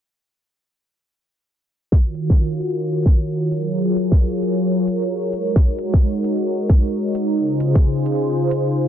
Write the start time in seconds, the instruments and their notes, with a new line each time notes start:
1.92 analog synth pad D#3 F4 F#4 A#4 C#5, kick
2.15 open hi-hat
2.30 kick
2.60 open hi-hat
3.06 kick, open hi-hat
3.51 analog synth pad F#3 F4 G#4, open hi-hat
3.97 open hi-hat
4.12 kick
4.42 open hi-hat
4.88 open hi-hat
5.33 analog synth pad G#3 D#4 F#4, open hi-hat
5.56 kick
5.79 open hi-hat
5.94 kick
6.24 open hi-hat
6.69 kick, open hi-hat
7.15 open hi-hat
7.38 analog synth pad C#3 F4 G#4 C5
7.60 open hi-hat
7.75 kick
8.06 open hi-hat
8.51 open hi-hat